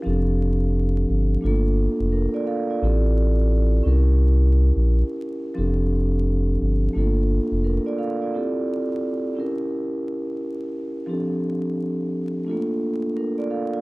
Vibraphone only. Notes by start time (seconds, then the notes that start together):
0.02 F3 C4 D4 G4
0.07 A4
1.41 A3 D4 F4
1.45 A#3 A4
2.12 D4 A#4
2.34 F4 D5
2.47 A4 F5
2.70 F4 D5
2.82 C4 E4 G4 A4
3.83 C#4 E4 G4
3.88 A#4
5.54 F3 C4 D4 G4
5.59 A4
6.93 A3 D4 F4
6.97 A#3 A4
7.64 D4 A#4
7.86 F4 D5
7.98 A4 F5
8.22 F4 D5
8.34 C4 E4 G4 A4
9.35 C#4 E4 G4
9.40 A#4
11.06 F3 C4 D4 G4
11.11 A4
12.45 A3 D4 F4
12.49 A#3 A4
13.16 D4 A#4
13.38 F4 D5
13.50 A4 F5
13.74 F4 D5